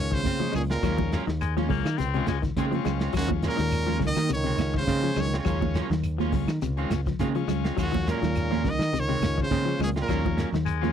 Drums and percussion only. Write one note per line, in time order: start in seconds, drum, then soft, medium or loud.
0.12 kick medium
0.12 snare soft
0.12 shekere soft
0.24 kick medium
0.24 snare soft
0.24 closed hi-hat medium
0.24 high conga medium
0.24 shekere loud
0.40 closed hi-hat soft
0.40 high conga medium
0.54 open hi-hat medium
0.54 low conga medium
0.54 claves medium
0.54 shekere medium
0.70 snare medium
0.70 closed hi-hat soft
0.70 shekere soft
0.83 kick loud
0.83 closed hi-hat medium
0.83 claves medium
0.83 shekere medium
0.98 kick medium
0.98 high conga loud
1.12 snare medium
1.12 closed hi-hat medium
1.12 shekere medium
1.28 snare medium
1.28 closed hi-hat soft
1.28 shekere soft
1.41 closed hi-hat medium
1.41 high conga soft
1.41 claves medium
1.41 shekere medium
1.57 snare soft
1.57 high conga loud
1.70 kick medium
1.70 open hi-hat medium
1.70 low conga loud
1.70 shekere soft
1.85 snare medium
1.85 closed hi-hat soft
1.85 claves medium
1.85 shekere medium
1.98 snare soft
1.98 closed hi-hat medium
1.98 high conga soft
1.98 shekere medium
2.14 closed hi-hat soft
2.26 snare medium
2.26 closed hi-hat medium
2.26 high conga medium
2.26 claves medium
2.26 shekere medium
2.42 kick medium
2.42 snare soft
2.42 closed hi-hat soft
2.42 shekere soft
2.57 kick medium
2.57 snare soft
2.57 closed hi-hat medium
2.57 high conga medium
2.57 shekere medium
2.72 closed hi-hat soft
2.72 high conga medium
2.85 snare soft
2.85 closed hi-hat medium
2.85 low conga medium
2.85 claves medium
2.85 shekere medium
3.00 snare medium
3.00 closed hi-hat soft
3.00 high conga soft
3.00 shekere soft
3.13 kick medium
3.13 closed hi-hat medium
3.13 claves medium
3.13 shekere medium
3.30 kick medium
3.30 high conga loud
3.42 snare medium
3.42 closed hi-hat medium
3.42 shekere loud
3.58 snare medium
3.58 closed hi-hat soft
3.58 shekere soft
3.71 closed hi-hat medium
3.71 high conga soft
3.71 claves medium
3.71 shekere medium
3.88 high conga loud
4.00 kick medium
4.00 snare soft
4.00 open hi-hat medium
4.00 low conga medium
4.00 shekere soft
4.15 snare medium
4.15 high conga medium
4.15 claves medium
4.15 shekere medium
4.29 snare soft
4.29 closed hi-hat medium
4.29 shekere medium
4.46 closed hi-hat soft
4.58 snare medium
4.58 closed hi-hat medium
4.58 high conga loud
4.58 claves medium
4.58 shekere loud
4.74 kick medium
4.74 snare soft
4.74 shekere soft
4.87 kick medium
4.87 closed hi-hat medium
4.87 high conga medium
4.87 shekere medium
5.04 high conga medium
5.16 open hi-hat medium
5.16 low conga medium
5.16 claves medium
5.16 shekere medium
5.32 snare medium
5.32 closed hi-hat soft
5.32 shekere soft
5.45 kick medium
5.45 closed hi-hat medium
5.45 claves medium
5.45 shekere medium
5.61 kick medium
5.61 high conga loud
5.74 snare medium
5.74 closed hi-hat medium
5.74 shekere medium
5.91 snare medium
5.91 closed hi-hat soft
5.91 low conga medium
5.91 shekere soft
6.04 closed hi-hat medium
6.04 high conga soft
6.04 claves medium
6.04 shekere medium
6.20 snare soft
6.20 high conga loud
6.32 kick medium
6.32 snare soft
6.32 open hi-hat medium
6.32 low conga loud
6.32 shekere soft
6.47 snare medium
6.47 closed hi-hat soft
6.47 claves medium
6.47 shekere medium
6.61 snare soft
6.61 closed hi-hat medium
6.61 high conga soft
6.61 shekere medium
6.77 closed hi-hat soft
6.90 snare medium
6.90 closed hi-hat medium
6.90 high conga medium
6.90 claves medium
6.90 shekere medium
7.06 kick medium
7.06 snare soft
7.06 closed hi-hat soft
7.06 shekere soft
7.19 kick medium
7.19 snare soft
7.19 closed hi-hat medium
7.19 high conga medium
7.19 shekere medium
7.35 closed hi-hat soft
7.49 snare soft
7.49 closed hi-hat medium
7.49 low conga medium
7.49 claves medium
7.49 shekere medium
7.65 snare medium
7.65 closed hi-hat soft
7.65 high conga soft
7.65 shekere soft
7.77 kick loud
7.77 closed hi-hat medium
7.77 claves medium
7.77 shekere medium
7.94 kick medium
7.94 high conga loud
8.07 snare medium
8.07 closed hi-hat medium
8.07 shekere medium
8.22 snare medium
8.22 closed hi-hat soft
8.22 low conga medium
8.22 shekere soft
8.35 closed hi-hat medium
8.35 high conga soft
8.35 claves medium
8.35 shekere loud
8.52 snare soft
8.52 high conga medium
8.65 kick medium
8.65 snare soft
8.65 open hi-hat medium
8.65 low conga medium
8.65 shekere soft
8.81 snare medium
8.81 claves medium
8.81 shekere medium
8.94 closed hi-hat medium
8.94 high conga soft
8.94 shekere medium
9.09 closed hi-hat soft
9.22 snare medium
9.22 closed hi-hat medium
9.22 high conga medium
9.22 claves medium
9.22 shekere loud
9.38 kick medium
9.38 shekere soft
9.51 kick medium
9.51 closed hi-hat medium
9.51 high conga medium
9.51 shekere medium
9.67 closed hi-hat soft
9.80 open hi-hat medium
9.80 low conga medium
9.80 claves medium
9.80 shekere loud
9.96 snare medium
9.96 closed hi-hat soft
9.96 high conga soft
9.96 shekere soft
10.08 kick loud
10.08 closed hi-hat medium
10.08 claves medium
10.08 shekere medium
10.25 kick medium
10.25 high conga loud
10.38 snare medium
10.38 closed hi-hat medium
10.38 shekere medium
10.54 snare medium
10.54 closed hi-hat soft
10.54 low conga medium
10.54 shekere soft
10.66 closed hi-hat medium
10.66 high conga soft
10.66 claves medium
10.66 shekere loud
10.83 snare soft
10.83 high conga loud